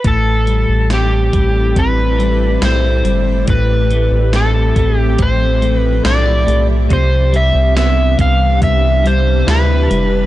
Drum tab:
HH |xxxxxxxx|xxxxxxxx|xxxxxxxx|
SD |--o---o-|--o---o-|--o---o-|
BD |o--oo---|o--oo---|o--oo---|